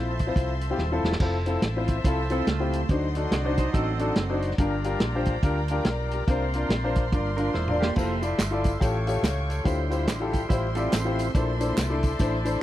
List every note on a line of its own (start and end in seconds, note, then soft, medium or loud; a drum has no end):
0.00 0.29 A#1 medium
0.00 1.18 F3 medium
0.00 1.18 C4 medium
0.00 1.18 E4 medium
0.00 1.18 A4 medium
0.00 1.19 C5 medium
0.00 1.18 E5 medium
0.00 1.19 A5 medium
0.00 1.19 C6 medium
0.19 kick medium
0.19 closed hi-hat medium
0.27 0.51 C4 medium
0.27 0.51 E4 medium
0.27 0.52 F4 medium
0.27 0.52 C5 medium
0.36 0.72 C2 medium
0.36 kick loud
0.36 closed hi-hat medium
0.61 closed hi-hat medium
0.70 0.79 C4 medium
0.70 0.80 E4 medium
0.70 0.80 F4 medium
0.70 0.80 G4 medium
0.78 1.00 D#1 medium
0.78 snare medium
0.91 1.10 C4 medium
0.91 1.10 E4 medium
0.91 1.10 F4 medium
0.91 1.10 A4 medium
1.03 1.17 E1 medium
1.03 snare medium
1.12 snare medium
1.20 1.56 F1 medium
1.20 2.86 F3 medium
1.20 2.86 C4 medium
1.20 1.35 C4 medium
1.20 1.35 E4 medium
1.20 2.87 F4 medium
1.20 1.35 F4 medium
1.20 1.27 G4 medium
1.20 1.35 A4 medium
1.20 2.88 E5 medium
1.20 2.86 E5 medium
1.20 2.88 A5 medium
1.20 4.55 C6 medium
1.20 kick medium
1.20 crash medium
1.26 2.89 A4 medium
1.46 1.60 C4 medium
1.46 1.60 E4 medium
1.46 1.60 F4 medium
1.46 1.61 A4 medium
1.46 closed hi-hat medium
1.62 1.98 A1 medium
1.62 snare loud
1.62 closed hi-hat medium
1.76 1.94 C4 medium
1.76 1.95 E4 medium
1.76 1.95 F4 medium
1.76 1.95 C5 medium
1.88 kick medium
1.88 closed hi-hat medium
2.04 2.41 C2 medium
2.04 2.20 C4 medium
2.04 2.30 E4 medium
2.04 2.20 E4 medium
2.04 2.20 F4 medium
2.04 2.20 A4 medium
2.04 2.29 C5 medium
2.04 kick loud
2.04 closed hi-hat medium
2.30 2.44 C4 medium
2.30 2.47 C4 medium
2.30 2.44 E4 medium
2.30 2.45 F4 medium
2.30 2.47 A4 medium
2.30 2.45 C5 medium
2.30 closed hi-hat medium
2.47 2.83 C#2 medium
2.47 2.88 A3 medium
2.47 2.88 F4 medium
2.47 snare loud
2.47 closed hi-hat medium
2.60 2.78 C4 medium
2.60 2.78 E4 medium
2.60 2.79 F4 medium
2.60 2.79 G4 medium
2.73 closed hi-hat medium
2.88 3.25 D2 medium
2.88 3.54 D3 medium
2.88 4.56 F#3 medium
2.88 4.55 D4 medium
2.88 3.04 D4 medium
2.88 4.55 D#4 medium
2.88 3.04 D#4 medium
2.88 3.04 F#4 medium
2.88 4.55 C5 medium
2.88 3.05 C5 medium
2.88 7.92 D5 medium
2.88 4.56 D#5 medium
2.88 4.57 F#5 medium
2.88 kick loud
2.88 closed hi-hat medium
3.15 3.29 D4 medium
3.15 3.29 D#4 medium
3.15 3.29 F#4 medium
3.15 3.30 A4 medium
3.15 closed hi-hat medium
3.31 3.67 C2 medium
3.31 3.58 F#4 medium
3.31 3.57 D5 medium
3.31 snare loud
3.31 closed hi-hat medium
3.44 3.63 D4 medium
3.44 3.63 D#4 medium
3.44 3.63 F#4 medium
3.44 3.64 C5 medium
3.57 3.74 D#4 medium
3.57 3.73 C5 medium
3.57 kick medium
3.57 closed hi-hat medium
3.73 4.10 A1 medium
3.73 4.39 C4 medium
3.73 3.88 D4 medium
3.73 3.88 D#4 medium
3.73 3.88 F#4 medium
3.73 4.39 A4 medium
3.73 3.89 D5 medium
3.73 kick medium
3.73 closed hi-hat medium
3.99 4.13 D4 medium
3.99 4.13 D#4 medium
3.99 4.14 F#4 medium
3.99 4.14 A4 medium
3.99 closed hi-hat medium
4.16 4.52 F#1 medium
4.16 snare loud
4.16 closed hi-hat medium
4.29 4.48 D4 medium
4.29 4.48 D#4 medium
4.29 4.48 F#4 medium
4.29 4.48 C5 medium
4.42 closed hi-hat medium
4.51 snare soft
4.58 4.94 G1 medium
4.58 5.23 G2 medium
4.58 6.25 G3 medium
4.58 4.73 D4 medium
4.58 6.25 D4 medium
4.58 6.24 F4 medium
4.58 4.73 F4 medium
4.58 4.73 G4 medium
4.58 6.24 A#4 medium
4.58 4.74 A#4 medium
4.58 6.27 G5 medium
4.58 7.94 A#5 medium
4.58 kick loud
4.58 closed hi-hat medium
4.84 4.98 D4 medium
4.84 4.98 F4 medium
4.84 4.98 G4 medium
4.84 4.98 A#4 medium
4.84 closed hi-hat medium
5.00 5.36 A#1 medium
5.00 snare loud
5.00 closed hi-hat medium
5.15 5.33 D4 medium
5.15 5.33 F4 medium
5.15 5.33 G4 medium
5.15 5.33 C5 medium
5.25 kick medium
5.25 closed hi-hat medium
5.43 5.79 D2 medium
5.43 5.58 D4 medium
5.43 5.58 F4 medium
5.43 5.58 G4 medium
5.43 5.58 A#4 medium
5.43 kick loud
5.43 closed hi-hat medium
5.68 5.83 D4 medium
5.68 5.83 F4 medium
5.68 5.84 G4 medium
5.68 5.84 A#4 medium
5.68 closed hi-hat medium
5.85 6.21 B1 medium
5.85 6.11 A#4 medium
5.85 6.11 D5 medium
5.85 snare loud
5.85 closed hi-hat medium
6.11 6.53 G4 medium
6.11 6.27 A#4 medium
6.11 closed hi-hat medium
6.28 6.64 C2 medium
6.28 6.92 C3 medium
6.28 7.94 A#3 medium
6.28 6.42 D4 medium
6.28 7.94 D4 medium
6.28 6.42 F4 medium
6.28 7.94 F4 medium
6.28 6.43 A#4 medium
6.28 6.43 C5 medium
6.28 7.94 C5 medium
6.28 8.79 C6 medium
6.28 kick loud
6.28 closed hi-hat medium
6.54 6.68 D4 medium
6.54 6.68 F4 medium
6.54 6.68 A#4 medium
6.54 6.68 D5 medium
6.54 closed hi-hat medium
6.69 7.14 A#1 medium
6.69 snare medium
6.69 closed hi-hat medium
6.84 7.02 D4 medium
6.84 7.02 F4 medium
6.84 7.02 A#4 medium
6.84 7.02 C5 medium
6.96 kick medium
6.96 closed hi-hat medium
7.12 7.48 G1 medium
7.12 7.27 D4 medium
7.12 7.27 F4 medium
7.12 7.28 A#4 medium
7.12 7.28 D5 medium
7.12 kick loud
7.12 closed hi-hat medium
7.37 7.53 D4 medium
7.37 7.52 D4 medium
7.37 7.52 F4 medium
7.37 7.53 A#4 medium
7.37 7.53 D5 medium
7.37 closed hi-hat medium
7.54 7.90 E1 medium
7.54 7.80 E4 medium
7.54 7.79 C5 medium
7.54 snare soft
7.68 7.87 D4 medium
7.68 7.87 F4 medium
7.68 7.87 A#4 medium
7.68 7.87 D5 medium
7.68 mid tom medium
7.80 8.21 A#3 medium
7.80 8.21 G4 medium
7.80 snare medium
7.96 8.33 F1 medium
7.96 8.81 A3 medium
7.96 8.11 E4 medium
7.96 8.81 E4 medium
7.96 8.11 F4 medium
7.96 8.81 F4 medium
7.96 8.11 A4 medium
7.96 8.04 A#4 medium
7.96 8.12 C5 medium
7.96 8.81 E5 medium
7.96 9.65 A5 medium
7.96 kick loud
7.96 tambourine medium
7.96 crash medium
8.04 8.82 C5 medium
8.22 8.36 E4 medium
8.22 8.36 F4 medium
8.22 8.36 A4 medium
8.22 8.36 D5 medium
8.22 closed hi-hat medium
8.22 tambourine medium
8.38 8.75 G1 medium
8.38 snare loud
8.38 clap medium
8.38 closed hi-hat medium
8.38 tambourine medium
8.51 8.70 E4 medium
8.51 8.70 F4 medium
8.51 8.71 A4 medium
8.51 8.71 D5 medium
8.64 kick medium
8.64 closed hi-hat medium
8.64 tambourine soft
8.80 9.17 A1 medium
8.80 9.45 A2 medium
8.80 9.65 A3 medium
8.80 8.95 F4 medium
8.80 9.64 F4 medium
8.80 8.95 G4 medium
8.80 9.65 G4 medium
8.80 8.96 A4 medium
8.80 8.89 C5 medium
8.80 8.96 C#5 medium
8.80 11.33 G5 medium
8.80 9.66 C#6 medium
8.80 kick loud
8.80 closed hi-hat medium
8.80 tambourine medium
8.88 9.67 C#5 medium
9.07 9.21 F4 medium
9.07 9.21 G4 medium
9.07 9.21 A4 medium
9.07 9.21 C#5 medium
9.07 closed hi-hat medium
9.07 tambourine soft
9.23 9.59 C#2 medium
9.23 9.48 C#5 medium
9.23 9.49 F5 medium
9.23 snare loud
9.23 clap medium
9.23 closed hi-hat medium
9.23 tambourine medium
9.50 9.90 A4 medium
9.50 9.90 C#5 medium
9.50 closed hi-hat medium
9.50 tambourine soft
9.64 10.08 D2 medium
9.64 10.30 D3 medium
9.64 11.32 G3 medium
9.64 9.80 E4 medium
9.64 11.31 E4 medium
9.64 9.80 F4 medium
9.64 11.31 F4 medium
9.64 9.80 G4 medium
9.64 9.80 C5 medium
9.64 11.31 C5 medium
9.64 12.63 E5 medium
9.64 12.63 C6 medium
9.64 kick medium
9.64 closed hi-hat medium
9.64 tambourine medium
9.90 10.05 E4 medium
9.90 10.05 F4 medium
9.90 10.05 G4 medium
9.90 10.05 C5 medium
9.90 closed hi-hat medium
9.90 tambourine medium
10.07 10.44 A1 medium
10.07 snare loud
10.07 clap medium
10.07 closed hi-hat medium
10.07 tambourine medium
10.20 10.39 E4 medium
10.20 10.39 F4 medium
10.20 10.40 G4 medium
10.20 10.40 A4 medium
10.33 10.48 G4 medium
10.33 kick medium
10.33 closed hi-hat medium
10.33 tambourine soft
10.49 10.86 A1 medium
10.49 10.74 E4 medium
10.49 10.65 E4 medium
10.49 10.65 F4 medium
10.49 10.65 G4 medium
10.49 10.75 C5 medium
10.49 10.65 C5 medium
10.49 kick loud
10.49 closed hi-hat medium
10.49 tambourine medium
10.75 11.32 C4 medium
10.75 10.90 E4 medium
10.75 10.90 F4 medium
10.75 10.90 G4 medium
10.75 11.31 A4 medium
10.75 10.90 D5 medium
10.75 closed hi-hat medium
10.75 tambourine soft
10.92 11.29 A1 medium
10.92 snare loud
10.92 clap medium
10.92 closed hi-hat medium
10.92 tambourine medium
11.05 11.24 E4 medium
11.05 11.24 F4 medium
11.05 11.25 G4 medium
11.05 11.24 C5 medium
11.18 snare soft
11.18 closed hi-hat medium
11.18 tambourine soft
11.34 11.71 A#1 loud
11.34 11.99 A#2 medium
11.34 12.63 A3 medium
11.34 11.49 D4 medium
11.34 12.63 D4 medium
11.34 11.49 E4 medium
11.34 12.63 E4 medium
11.34 11.49 A4 medium
11.34 11.50 C5 medium
11.34 12.63 C5 medium
11.34 12.63 D5 medium
11.34 12.63 A5 medium
11.34 kick loud
11.34 closed hi-hat medium
11.34 tambourine medium
11.60 11.74 D4 medium
11.60 11.74 E4 medium
11.60 11.75 A4 medium
11.60 11.75 C5 medium
11.60 closed hi-hat medium
11.60 tambourine medium
11.77 12.13 C2 medium
11.77 snare loud
11.77 clap medium
11.77 closed hi-hat medium
11.77 tambourine medium
11.90 12.08 D4 medium
11.90 12.09 E4 medium
11.90 12.09 A4 medium
11.90 12.09 D5 medium
12.03 kick medium
12.03 closed hi-hat medium
12.03 tambourine soft
12.19 12.56 A1 medium
12.19 12.34 D4 medium
12.19 12.34 E4 medium
12.19 12.34 A4 medium
12.19 12.35 C5 medium
12.19 kick loud
12.19 closed hi-hat medium
12.19 tambourine medium
12.45 12.59 D4 medium
12.45 12.59 E4 medium
12.45 12.59 A4 medium
12.45 12.59 C5 medium
12.45 closed hi-hat medium
12.45 tambourine medium